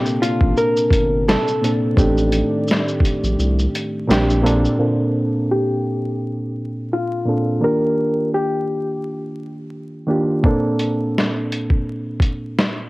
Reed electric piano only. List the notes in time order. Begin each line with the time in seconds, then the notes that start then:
Already playing: A#2 A#3 C4 D4 A4
1.61 A#2 A#3 C4 D4 A4
1.96 A2 A3 C4 D4 D#4 G4
4.07 A#2 A#3 C4 D4 G4
4.42 A#2 A#3 C4 D4 A4
4.78 A#2 A#3 C4 D4 A4
7.25 A#2 A#3 C4 D4 A4
7.60 D#3 A#3 D4 F4 G4
10.07 D#3 A#3 D4 F4 G4
10.43 A#2 A#3 C4 D4 A4